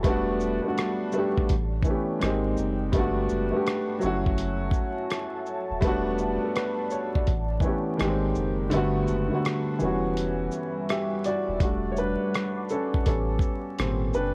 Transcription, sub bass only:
0.05 E1
1.50 A1
2.23 G#1
2.59 F#1
2.94 G1
3.31 F#1
4.03 F#1
5.71 D#1
5.83 E1
7.28 A1
8.01 G#1
8.36 F#1
8.73 G1
9.09 F#1
9.81 E1
11.49 D#1
11.61 E1
13.07 A1
13.79 G#1
14.15 F#1

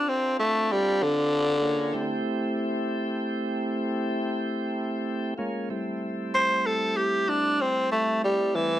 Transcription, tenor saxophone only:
Already playing: D4
0.09 C4
0.39 A3
0.72 G3
1.03 D3
6.35 C5
6.66 A4
6.97 G4
7.29 D4
7.61 C4
7.92 A3
8.24 G3
8.55 E3

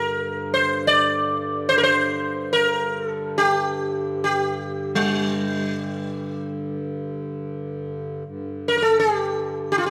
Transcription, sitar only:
Already playing: A#4
0.54 C5
0.87 D5
1.69 C5
1.78 A#4
1.83 C5
2.53 A#4
3.04 A4
3.38 G4
4.24 G4
4.95 G3
8.68 A#4
8.77 A#4
8.82 A4
9.00 G4
9.72 G4
9.78 F4
9.86 G4

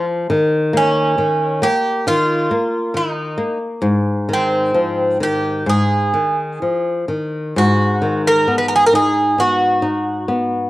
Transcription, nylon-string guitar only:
Already playing: F3
0.30 D#3
0.73 A#3
1.18 D#3
1.62 A#3
2.07 D#3
2.51 A#3
2.94 D#3
3.38 A#3
3.82 G#2
4.29 D#3
4.75 F3
5.20 D#3
5.66 G#2
6.14 D#3
6.62 F3
7.08 D#3
7.56 G#2
8.02 D#3
8.48 B3
8.93 D#4
9.38 B3
9.82 D#4
10.28 B3

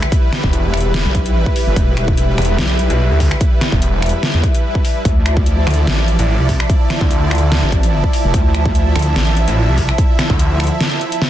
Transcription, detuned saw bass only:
0.44 E1
0.85 E1
2.38 E1
2.90 B1
3.11 D2
3.72 E1
5.67 D2
6.19 A1
6.39 C2
7.01 D2
7.42 D2
8.96 D2
9.48 A1
9.68 C2
10.30 D2

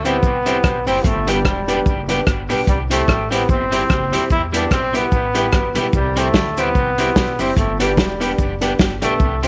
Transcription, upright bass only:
Already playing: D2
0.23 C2
0.64 B1
0.87 F#1
1.04 G1
1.45 E1
1.86 F#1
2.26 G1
2.50 B1
2.67 C2
3.08 A1
3.49 G1
3.90 F#1
4.12 D#2
4.30 E2
4.71 B1
5.12 A1
5.53 G1
5.76 B1
5.93 C2
6.75 C2
7.16 B1
7.39 F#1
7.57 G1
7.97 E1
8.38 F#1
8.79 G1
9.02 B1
9.20 C2

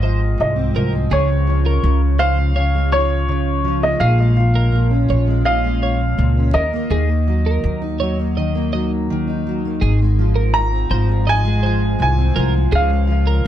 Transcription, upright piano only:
Already playing: D#5
0.41 D#5
1.13 C#5
2.19 F5
2.92 C#5
3.83 D#5
4.00 F5
5.45 F5
6.54 D#5
10.54 A#5
11.29 G#5
12.02 G#5
12.75 F5

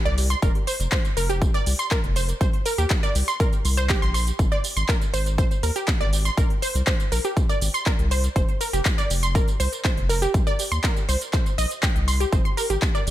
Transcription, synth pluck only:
0.05 D5
0.30 C6
0.42 A#4
0.67 C5
0.92 C5
1.17 A#4
1.29 G4
1.54 D5
1.79 C6
1.91 A#4
2.16 C5
2.41 C5
2.66 A#4
2.78 G4
3.03 D5
3.28 C6
3.40 A#4
3.77 C5
3.90 G4
4.02 C6
4.14 C6
4.52 D5
4.77 C6
4.89 A#4
5.14 C5
5.38 C5
5.63 A#4
5.76 G4
6.01 D5
6.25 C6
6.38 A#4
6.62 C5
6.87 C5
7.12 A#4
7.25 G4
7.49 D5
7.74 C6
7.86 A#4
8.11 C5
8.36 C5
8.61 A#4
8.73 G4
8.98 D5
9.23 C6
9.35 A#4
9.60 C5
9.85 C5
10.09 A#4
10.22 G4
10.47 D5
10.72 C6
10.84 A#4
11.09 C5
11.33 C5
11.58 D#5
11.83 G5
12.08 C6
12.20 G4
12.33 C5
12.45 C6
12.57 A#4
12.70 G4
12.95 D5

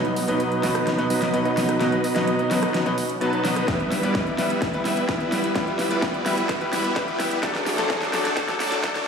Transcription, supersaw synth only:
Already playing: F#3 B3 D#4 B4 D#5
0.28 F#3 B3 D#4 B4 D#5
0.63 F#3 B3 D#4 B4 D#5
1.10 F#3 B3 D#4 B4 D#5
1.45 F#3 B3 D#4 B4 D#5
1.81 F#3 B3 D#4 B4 D#5
2.16 F#3 B3 D#4 B4 D#5
2.51 F#3 B3 D#4 B4 D#5
3.21 F#3 B3 D#4 B4 A5
3.45 F#3 B3 D#4 B4 D#5
3.68 G3 B3 E4 B4 E5
4.03 G3 B3 E4 B4 D5
4.38 G3 B3 E4 B4 E5
4.85 G3 B3 E4 B4 E5
5.20 G3 B3 E4 B4 E5
5.56 G3 B3 E4 B4 E5
5.91 G3 B3 E4 B4 D5
6.26 G3 B3 E4 B4 E5
6.73 G3 B3 E4 B4 E5
7.08 G3 B3 E4 B4 E5
7.43 F#3 A3 D4 A4 D5
7.78 F#3 A3 D4 A4 C5
8.13 F#3 A3 D4 A4 D5
8.60 F#3 A3 D4 A4 D5
8.95 F#3 A3 D4 A4 D5

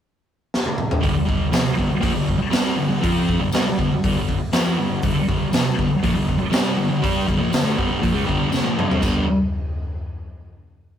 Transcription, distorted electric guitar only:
1.00 G2 D3
1.14 muted distorted electric guitar stroke
1.25 G2 D3
1.52 F2 C3
1.64 muted distorted electric guitar stroke
1.77 G2 D3
1.90 muted distorted electric guitar stroke
2.00 A#2 F3
2.13 G2 D3
2.38 muted distorted electric guitar stroke
2.50 C3 G3 C4
2.76 G2 D3
2.88 G2 D3
3.01 F3 C4 F4
3.39 G2 D3
3.53 C3 G3
3.65 muted distorted electric guitar stroke
3.77 G2 D3
3.92 muted distorted electric guitar stroke
4.04 G2 D3
4.17 G2 D3
4.52 F3 C4 F4
4.78 G2 D3
5.03 G2 D3
5.15 muted distorted electric guitar stroke
5.28 G2 D3
5.52 F2 C3
5.64 muted distorted electric guitar stroke
5.78 G2 D3
5.89 muted distorted electric guitar stroke
6.03 A#2 F3
6.15 G2 D3
6.38 muted distorted electric guitar stroke
6.51 C3 G3 C4
6.77 G2 D3
6.89 G2 D3
7.01 G3 D4 G4
7.27 G2 D3
7.38 A#2 F3
7.50 G2 D3
7.63 D3 A3
7.77 G2 D3 G3
8.01 A#2 F3
8.13 C#3 G#3
8.25 G2 D3 G3
8.50 C#3 G#3
8.64 A#2 F3
8.77 G2 D3
8.88 C3 G3
9.02 G2 D3 G3

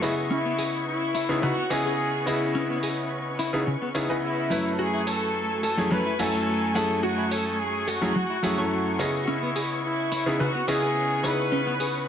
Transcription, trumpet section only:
0.32 E4
0.87 E4
1.43 F#4
1.71 G#4
2.27 E4
4.23 E4
4.73 A4
4.79 G#4
5.07 A4
5.63 A4
5.91 B4
6.19 A4
6.75 A4
7.03 F#4
7.31 A4
7.59 G#4
7.87 F#4
9.21 F#4
9.28 E4
9.84 E4
10.40 F#4
10.68 G#4
11.24 B4

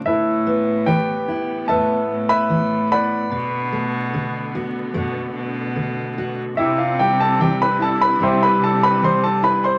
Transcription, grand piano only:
0.06 E4 A4 B4 E5
0.86 G4 B4 G5
1.68 A4 E5 A5
2.29 B4 E5 B5
2.92 B4 D5 F#5 B5
6.57 E4 G4 E5
6.78 F4 F5
6.99 G4 G5
7.20 A4 A5
7.41 G4 G5
7.62 B4 B5
7.82 A4 A5
8.01 B4 B5
8.23 C5 E5 G5 C6
8.43 B4 B5
8.64 A4 A5
8.83 B4 B5
9.04 C5 C6
9.24 A4 A5
9.44 B4 B5
9.64 C5 C6

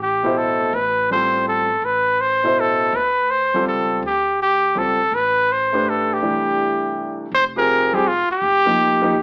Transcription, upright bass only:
Already playing: A1
0.61 A#1
0.73 A1
1.82 A1
2.92 D2
3.66 C#2
4.03 D2
4.76 C#2
5.11 A1
7.32 F1
8.30 muted upright bass stroke
8.42 F1

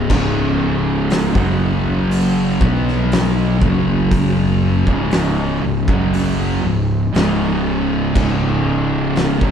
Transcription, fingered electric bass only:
0.10 C#1
1.35 F#1
2.62 B1
3.61 F#1
4.87 C#1
5.63 C#1
5.88 F#1
6.64 C#1
7.15 C#1
8.16 C#1
9.42 F#1

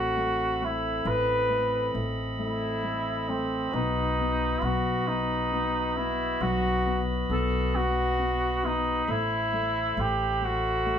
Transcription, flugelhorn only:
Already playing: F#4
0.64 E4
1.08 B4
2.40 E4
3.29 C4
3.74 D#4
4.63 F#4
5.07 D#4
5.96 E4
6.42 F#4
7.32 A4
7.75 F#4
8.66 D#4
9.11 E4
10.00 G4
10.45 F#4

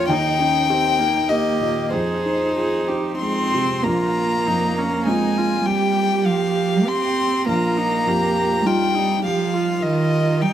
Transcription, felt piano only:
Already playing: A#1 F2 A#3 C#4 F4 C#5 F5 G5
0.09 D#2 G5
0.39 D#4
0.69 G4
1.00 D#4
1.30 A#3 D#5
1.61 A#2
1.92 F2 C5
2.26 D#4
2.57 F4
2.89 D#4
3.22 G#3
3.54 C3
3.85 A#1
4.48 F2
5.08 A#3 C4 F4
7.48 A#1
8.07 F2
8.65 G3 D#4 F4

